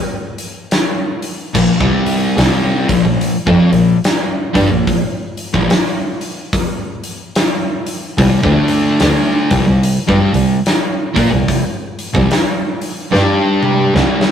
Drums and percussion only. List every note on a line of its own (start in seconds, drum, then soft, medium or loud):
0.38 open hi-hat medium
0.71 snare loud
0.71 open hi-hat medium
1.22 open hi-hat medium
1.55 kick loud
1.55 crash loud
1.81 kick loud
2.06 open hi-hat medium
2.38 snare loud
2.38 open hi-hat medium
2.89 kick loud
2.89 open hi-hat medium
3.21 open hi-hat medium
3.47 kick loud
3.73 open hi-hat medium
4.04 snare loud
4.04 open hi-hat medium
4.55 kick loud
4.55 open hi-hat medium
4.87 kick loud
4.87 open hi-hat medium
5.37 open hi-hat medium
5.54 kick loud
5.70 snare loud
5.70 open hi-hat medium
6.21 open hi-hat medium
6.53 kick loud
6.53 open hi-hat medium
7.04 open hi-hat medium
7.35 snare loud
7.35 open hi-hat medium
7.87 open hi-hat medium
8.18 kick loud
8.18 open hi-hat medium
8.43 kick loud
8.68 open hi-hat medium
9.00 snare loud
9.00 open hi-hat medium
9.51 kick loud
9.51 open hi-hat medium
9.83 open hi-hat medium
10.09 kick loud
10.34 open hi-hat medium
10.66 snare medium
10.66 open hi-hat medium
11.16 kick loud
11.16 open hi-hat medium
11.48 kick loud
11.48 open hi-hat medium
11.99 open hi-hat medium
12.15 kick loud
12.31 snare loud
12.31 open hi-hat medium
12.81 open hi-hat medium
13.14 snare medium
13.63 mid tom medium
13.96 snare medium
14.21 snare medium